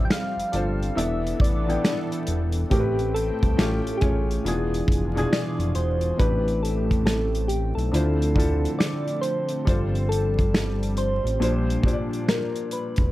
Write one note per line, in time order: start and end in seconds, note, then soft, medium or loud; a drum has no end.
0.00 0.93 F3 medium
0.00 0.41 G3 medium
0.00 0.95 G3 medium
0.00 0.93 C4 medium
0.00 0.42 D4 medium
0.00 0.42 F4 medium
0.00 0.43 A4 medium
0.00 0.43 C5 medium
0.05 0.13 G5 medium
0.10 0.99 F5 loud
0.10 finger snap medium
0.10 snare loud
0.10 closed hi-hat medium
0.37 0.43 G1 soft
0.37 closed hi-hat medium
0.52 0.90 G1 medium
0.52 0.96 G3 medium
0.52 0.96 D4 medium
0.52 0.97 F4 medium
0.52 0.97 A4 medium
0.52 0.98 C5 medium
0.52 closed hi-hat medium
0.83 closed hi-hat soft
0.95 1.34 E1 medium
0.95 1.57 E3 medium
0.95 2.69 E3 medium
0.95 1.58 B3 medium
0.95 2.69 B3 medium
0.95 2.69 D4 medium
0.95 1.58 D4 medium
0.95 2.69 A4 medium
0.95 1.59 A4 medium
0.95 1.40 E5 loud
0.95 1.59 E5 medium
0.95 closed hi-hat medium
1.27 closed hi-hat soft
1.40 1.77 A1 loud
1.40 2.24 D5 medium
1.40 kick medium
1.44 closed hi-hat medium
1.66 2.61 E3 medium
1.66 2.61 B3 medium
1.66 2.62 D4 medium
1.66 2.62 A4 medium
1.66 2.63 G5 medium
1.66 closed hi-hat soft
1.84 finger snap medium
1.84 snare loud
1.84 closed hi-hat medium
2.12 closed hi-hat soft
2.27 2.64 E1 medium
2.27 closed hi-hat medium
2.52 closed hi-hat medium
2.70 3.31 A1 loud
2.70 3.55 A2 medium
2.70 3.56 A3 medium
2.70 4.43 A3 medium
2.70 3.58 C4 medium
2.70 3.16 G4 loud
2.70 3.59 G4 medium
2.70 2.80 A#4 medium
2.70 4.44 G5 medium
2.70 kick loud
2.70 closed hi-hat medium
2.80 3.62 B4 medium
2.99 closed hi-hat soft
3.14 3.99 A4 loud
3.14 closed hi-hat medium
3.43 3.56 C2 medium
3.43 kick medium
3.43 closed hi-hat soft
3.57 3.81 A1 loud
3.57 3.97 A2 medium
3.57 3.97 A3 medium
3.57 3.98 C#4 medium
3.57 4.45 C#4 medium
3.57 3.98 F4 medium
3.57 3.99 G4 medium
3.57 finger snap medium
3.57 snare loud
3.57 closed hi-hat medium
3.85 3.92 A1 soft
3.85 closed hi-hat soft
3.97 4.44 A2 medium
3.97 4.45 A3 medium
3.97 4.03 G4 medium
3.97 5.32 G#4 loud
3.97 closed hi-hat medium
4.02 4.39 A1 loud
4.02 4.45 C#4 medium
4.02 4.45 F4 medium
4.02 4.46 C#5 medium
4.02 kick loud
4.31 closed hi-hat soft
4.44 4.82 E1 loud
4.44 5.06 E3 medium
4.44 6.17 E3 medium
4.44 5.06 B3 medium
4.44 6.17 D4 medium
4.44 5.07 D4 medium
4.44 6.17 F4 medium
4.44 5.07 F4 medium
4.44 6.17 G#4 medium
4.44 5.07 G#4 medium
4.44 closed hi-hat medium
4.74 closed hi-hat soft
4.88 5.25 F1 loud
4.88 kick loud
4.88 closed hi-hat medium
5.15 6.09 B2 medium
5.15 6.09 E3 medium
5.15 6.10 D4 medium
5.15 6.10 F4 medium
5.15 6.11 G#4 loud
5.15 closed hi-hat soft
5.33 5.73 D5 loud
5.33 finger snap loud
5.33 snare loud
5.33 closed hi-hat medium
5.59 5.73 F1 medium
5.59 closed hi-hat medium
5.75 6.12 E1 medium
5.75 6.21 C5 loud
5.75 closed hi-hat medium
6.01 closed hi-hat soft
6.17 7.73 A1 loud
6.17 7.77 A2 medium
6.17 7.77 E3 medium
6.17 9.63 A3 medium
6.17 7.77 C4 medium
6.17 11.36 C4 medium
6.17 7.78 D4 medium
6.17 7.91 G4 medium
6.17 7.78 G4 medium
6.17 6.62 B4 loud
6.17 7.79 B4 medium
6.17 kick loud
6.17 closed hi-hat medium
6.48 closed hi-hat soft
6.63 7.03 A4 medium
6.63 closed hi-hat medium
6.91 kick medium
6.91 closed hi-hat soft
7.05 7.50 A4 medium
7.05 finger snap medium
7.05 snare loud
7.05 closed hi-hat medium
7.35 closed hi-hat soft
7.48 7.77 G4 medium
7.48 closed hi-hat medium
7.75 7.91 B1 medium
7.75 8.80 A4 medium
7.75 closed hi-hat soft
7.91 8.67 D2 loud
7.91 9.64 D3 medium
7.91 8.32 D3 medium
7.91 11.36 F3 medium
7.91 8.32 D4 medium
7.91 8.33 E4 medium
7.91 8.33 F4 medium
7.91 closed hi-hat medium
7.96 8.34 C5 medium
8.22 closed hi-hat soft
8.35 9.55 D3 medium
8.35 9.55 D4 medium
8.35 9.55 E4 medium
8.35 9.56 F4 medium
8.35 9.56 A4 medium
8.35 kick medium
8.40 closed hi-hat medium
8.65 closed hi-hat soft
8.79 9.23 D5 loud
8.79 finger snap medium
8.79 snare loud
8.79 closed hi-hat medium
9.08 closed hi-hat soft
9.21 10.08 C5 loud
9.21 closed hi-hat medium
9.49 closed hi-hat medium
9.65 11.20 G1 loud
9.65 11.24 G3 medium
9.65 13.11 G3 medium
9.65 11.25 D4 medium
9.65 11.25 F4 medium
9.65 11.26 A4 medium
9.65 11.26 C5 medium
9.65 kick loud
9.65 closed hi-hat medium
9.95 closed hi-hat soft
10.09 10.92 A4 loud
10.09 closed hi-hat medium
10.39 kick medium
10.39 closed hi-hat soft
10.54 finger snap medium
10.54 snare loud
10.54 closed hi-hat medium
10.83 closed hi-hat soft
10.97 11.80 C5 loud
10.97 closed hi-hat medium
11.24 11.38 A1 medium
11.24 closed hi-hat soft
11.40 11.77 A#1 loud
11.40 11.80 A#2 medium
11.40 13.12 A#2 medium
11.40 11.80 F3 medium
11.40 13.12 D4 medium
11.40 11.81 D4 medium
11.40 11.81 G4 medium
11.40 11.81 C5 medium
11.40 closed hi-hat medium
11.70 closed hi-hat soft
11.83 13.02 A#2 medium
11.83 13.03 F3 medium
11.83 13.03 D4 medium
11.83 13.04 G4 medium
11.83 11.93 C5 medium
11.83 kick loud
11.88 closed hi-hat medium
11.93 13.07 D5 medium
12.13 closed hi-hat soft
12.28 12.69 A#4 loud
12.28 finger snap loud
12.28 snare loud
12.28 closed hi-hat medium
12.56 closed hi-hat soft
12.71 13.12 B4 medium
12.71 closed hi-hat medium
12.96 13.12 E1 loud
12.96 kick medium
12.96 closed hi-hat soft